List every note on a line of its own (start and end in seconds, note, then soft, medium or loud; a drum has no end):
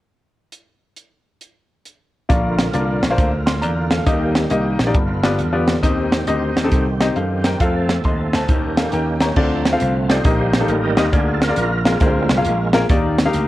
0.53 closed hi-hat medium
0.97 closed hi-hat medium
1.41 closed hi-hat medium
1.85 closed hi-hat medium
2.29 2.67 A#1 loud
2.29 2.98 A#2 medium
2.29 4.05 D3 medium
2.29 2.61 A#3 medium
2.29 4.05 A#3 medium
2.29 2.61 D4 medium
2.29 2.61 F4 medium
2.29 4.05 F4 medium
2.29 2.61 D5 medium
2.29 kick loud
2.29 closed hi-hat medium
2.58 snare loud
2.58 closed hi-hat medium
2.73 2.98 C2 medium
2.73 3.00 A#3 medium
2.73 3.00 D4 medium
2.73 3.00 F4 medium
2.73 3.00 D5 medium
2.73 closed hi-hat medium
3.03 3.16 A#1 medium
3.03 snare loud
3.03 closed hi-hat medium
3.10 3.30 A#3 medium
3.10 3.30 D4 medium
3.10 3.30 F4 medium
3.10 3.30 C5 medium
3.18 3.63 D2 medium
3.18 kick loud
3.18 closed hi-hat medium
3.46 3.61 C6 medium
3.46 snare loud
3.46 closed hi-hat medium
3.61 4.00 E2 medium
3.61 3.89 D5 medium
3.61 3.89 A#5 medium
3.61 closed hi-hat medium
3.90 4.33 A4 medium
3.90 4.33 F5 medium
3.90 snare loud
3.90 closed hi-hat medium
4.06 4.44 D#2 loud
4.06 4.75 D#3 medium
4.06 4.94 D#3 medium
4.06 4.95 G3 medium
4.06 4.38 A#3 medium
4.06 4.95 A#3 medium
4.06 4.38 D#4 medium
4.06 4.38 G4 medium
4.06 4.94 G4 medium
4.06 4.38 D#5 medium
4.06 kick loud
4.06 closed hi-hat medium
4.35 snare loud
4.35 closed hi-hat medium
4.50 4.75 C2 medium
4.50 4.77 A#3 medium
4.50 4.77 D#4 medium
4.50 4.77 G4 medium
4.50 4.77 D#5 medium
4.50 closed hi-hat medium
4.79 4.95 A#1 medium
4.79 snare loud
4.79 closed hi-hat medium
4.87 4.95 A#3 medium
4.87 4.95 D#4 medium
4.87 4.95 G4 medium
4.87 4.95 D5 medium
4.94 5.40 G1 medium
4.94 5.64 G2 medium
4.94 5.83 D3 medium
4.94 5.83 B3 medium
4.94 5.83 F4 medium
4.94 kick loud
4.94 closed hi-hat medium
5.24 5.38 B3 medium
5.24 5.38 F4 medium
5.24 5.38 G4 medium
5.24 5.38 D5 medium
5.24 snare loud
5.24 closed hi-hat medium
5.39 5.76 E2 medium
5.39 closed hi-hat medium
5.53 5.74 B3 medium
5.53 5.74 F4 medium
5.53 5.74 G4 medium
5.53 5.74 D5 medium
5.68 snare loud
5.68 closed hi-hat medium
5.83 6.21 D#2 loud
5.83 6.52 D#3 medium
5.83 7.59 D#3 medium
5.83 6.15 C4 medium
5.83 8.46 C4 medium
5.83 6.15 D#4 medium
5.83 6.15 G4 medium
5.83 7.59 G4 medium
5.83 6.15 D#5 medium
5.83 kick loud
5.83 closed hi-hat medium
6.12 snare loud
6.12 closed hi-hat medium
6.27 6.52 D2 medium
6.27 6.54 C4 medium
6.27 6.54 D#4 medium
6.27 6.54 G4 medium
6.27 6.54 D#5 medium
6.27 closed hi-hat medium
6.56 6.69 D#2 medium
6.56 snare loud
6.56 closed hi-hat medium
6.64 6.84 C4 medium
6.64 6.84 D#4 medium
6.64 6.84 G4 medium
6.64 6.84 A4 medium
6.71 7.09 C2 medium
6.71 kick loud
6.71 closed hi-hat medium
7.00 7.15 C4 medium
7.00 7.14 D#4 medium
7.00 7.15 G4 medium
7.00 7.15 D#5 medium
7.00 snare loud
7.00 closed hi-hat medium
7.16 7.54 F#2 medium
7.16 7.44 A4 medium
7.16 7.43 F5 medium
7.16 closed hi-hat medium
7.44 7.87 A#4 medium
7.44 7.87 G5 medium
7.44 snare medium
7.44 closed hi-hat medium
7.59 7.98 F2 loud
7.59 8.47 F3 medium
7.59 8.48 A3 medium
7.59 7.93 C4 medium
7.59 7.92 F4 medium
7.59 8.47 A4 medium
7.59 7.93 A4 medium
7.59 7.93 F5 medium
7.59 kick loud
7.59 closed hi-hat medium
7.89 snare loud
7.89 closed hi-hat medium
8.04 8.29 D#2 medium
8.04 8.32 D#5 medium
8.04 8.32 C6 medium
8.04 kick medium
8.04 closed hi-hat medium
8.33 8.47 D2 medium
8.33 8.76 C5 medium
8.33 8.75 A5 medium
8.33 snare medium
8.33 closed hi-hat medium
8.48 8.86 D#2 medium
8.48 9.36 D#3 medium
8.48 9.17 D#3 medium
8.48 9.36 A#3 medium
8.48 9.36 C#4 medium
8.48 9.36 G4 medium
8.48 kick loud
8.48 closed hi-hat medium
8.77 8.92 A4 medium
8.77 8.92 F5 medium
8.77 snare loud
8.77 closed hi-hat medium
8.92 9.30 D#2 medium
8.92 9.20 A#4 medium
8.92 9.20 G5 medium
8.92 closed hi-hat medium
9.21 9.64 C#5 soft
9.21 9.64 A#5 medium
9.21 snare loud
9.21 closed hi-hat medium
9.36 9.74 D2 loud
9.36 10.06 D3 medium
9.36 10.21 F3 medium
9.36 10.21 A3 medium
9.36 9.63 C4 medium
9.36 10.21 C4 medium
9.36 9.63 F4 medium
9.36 9.63 A4 medium
9.36 9.63 D5 medium
9.36 kick loud
9.36 crash medium
9.66 snare loud
9.66 closed hi-hat medium
9.73 9.92 C4 medium
9.73 9.93 F4 medium
9.73 9.93 A4 medium
9.73 9.93 F5 medium
9.80 10.19 C2 medium
9.80 closed hi-hat medium
10.09 10.19 C4 medium
10.09 10.69 D#4 medium
10.09 10.19 F4 medium
10.09 10.69 G4 medium
10.09 10.19 A4 medium
10.09 10.71 C5 loud
10.09 10.19 D5 medium
10.09 snare loud
10.09 closed hi-hat medium
10.24 10.63 A#1 loud
10.24 10.94 A#2 medium
10.24 11.09 D#3 medium
10.24 11.09 G3 soft
10.24 11.09 A#3 medium
10.24 10.51 A#3 medium
10.24 10.51 D#4 medium
10.24 10.51 G4 medium
10.24 10.51 D#5 medium
10.24 kick loud
10.24 closed hi-hat medium
10.54 snare loud
10.54 closed hi-hat medium
10.61 10.81 A#3 medium
10.61 10.81 D#4 medium
10.61 10.81 G4 medium
10.61 10.81 A4 medium
10.69 10.98 A1 medium
10.69 11.11 D#4 medium
10.69 11.11 G4 medium
10.69 11.15 A#4 loud
10.69 closed hi-hat medium
10.97 11.11 D#2 medium
10.97 11.07 A#3 medium
10.97 11.07 D#4 medium
10.97 11.07 G4 medium
10.97 11.07 D#5 medium
10.97 snare loud
10.97 closed hi-hat medium
11.13 11.51 D2 loud
11.13 11.82 D3 medium
11.13 11.39 A#3 medium
11.13 11.39 F4 medium
11.13 11.42 F4 medium
11.13 11.39 G#4 medium
11.13 11.32 G#4 medium
11.13 11.39 D5 medium
11.13 kick loud
11.13 closed hi-hat medium
11.34 11.43 A4 medium
11.42 12.02 F4 medium
11.42 12.04 A#4 loud
11.42 snare loud
11.42 closed hi-hat medium
11.49 11.69 A#3 medium
11.49 11.69 F4 medium
11.49 11.69 G#4 medium
11.49 11.69 D5 medium
11.57 11.95 A#1 medium
11.57 closed hi-hat medium
11.86 12.42 D3 medium
11.86 12.02 G#3 medium
11.86 11.95 A#3 medium
11.86 12.43 C4 medium
11.86 11.95 F4 medium
11.86 11.95 G#4 medium
11.86 11.95 A#4 medium
11.86 snare medium
11.86 closed hi-hat medium
12.01 12.26 D2 loud
12.01 12.87 G#3 medium
12.01 12.28 A#3 medium
12.01 12.86 A#3 medium
12.01 12.28 F4 medium
12.01 12.71 F4 medium
12.01 12.28 G#4 medium
12.01 12.28 C5 medium
12.01 kick loud
12.01 closed hi-hat medium
12.30 12.43 C2 medium
12.30 snare loud
12.30 closed hi-hat medium
12.38 12.57 A#3 medium
12.38 12.57 F4 medium
12.38 12.57 G#4 medium
12.38 12.57 F5 medium
12.45 12.83 A#1 medium
12.45 closed hi-hat medium
12.73 12.84 A#3 medium
12.73 12.84 F4 medium
12.73 12.84 G#4 medium
12.73 12.84 A#4 loud
12.73 snare loud
12.73 closed hi-hat medium
12.89 13.27 D#2 medium
12.89 13.48 D#3 medium
12.89 13.16 A#3 medium
12.89 13.16 D#4 medium
12.89 13.16 G4 medium
12.89 13.16 D5 medium
12.89 kick loud
12.89 closed hi-hat medium
13.18 snare loud
13.18 closed hi-hat medium
13.25 13.45 A#3 medium
13.25 13.45 D#4 medium
13.25 13.45 G4 medium
13.25 13.45 F5 loud
13.33 13.48 D2 medium
13.33 closed hi-hat medium